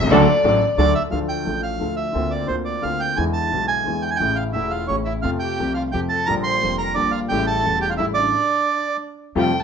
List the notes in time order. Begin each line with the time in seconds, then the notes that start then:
Already playing: E5
0.02 C2
0.07 C#2 D4
0.11 D2 D3 F#3 A3 D4 F#4 A4 D5
0.43 A1 A2 F#3 A3 D4 F#4 A4
0.78 D2 D3 F#3 A3 D4 F#4 A4 D5
0.95 E5
1.10 D2 D3 F3 A3 D4 A4 F5
1.29 G5
1.44 A1 A2 F3 A3 D4 A4
1.63 F5
1.78 D2 D3 F3 A3 D4 A4
1.96 E5
2.12 D2 D3 A#3 C4
2.16 F4
2.31 D5
2.47 D2 D3 A#3 C4 F4 C5
2.65 D5
2.81 D2 D3 A#3 C4 F4 F5
3.00 G5
3.16 E2 D3 E3 G#3 B3 E4 G#5
3.33 A5
3.50 B1 B2 D3 G#3 B3 E4
3.68 G#5
3.84 E2 D3 E3 G#3 B3 E4
4.02 G5
4.11 G#5
4.16 A1 C#3 E3 G5
4.20 A1 A2 A3 E4
4.36 F5
4.53 E1 E2 C#3 E3 A3 E4 E5
4.70 F4 F5
4.87 A1 A2 C#3 E3 A3 C#4 C#5
4.91 E4
5.05 E4 E5
5.22 F2 C3 F3 A3 F4 F5
5.26 F4
5.39 G4 G5
5.59 C2 C3 F3 A3 F4
5.74 F4 F5
5.92 F2 C3 F3 A3 G4 G5
5.96 F4
6.09 A4 A5
6.26 A#1 A#2 D3 G3 A#3 A#4 A#5
6.31 F4
6.44 C5 C6
6.61 F1 F2 D3 G3 A#3 F4
6.78 A#4 A#5
6.95 A#1 A#2 D3 G3 A#3 D4 D5
6.99 F4
7.11 F4 F5
7.29 A1 A2 C#3 G3 A3 G4 G5
7.33 E4
7.47 A4 A5
7.63 E1 E2 C#3 G3 A3 E4
7.81 G4 G5
7.89 F4 F5
7.97 A1 A2 C#3 G3 A3 E4 E5
8.14 D4 D5
9.35 F2 C3 F3 G3 A3 F4 G4 G5
9.60 A5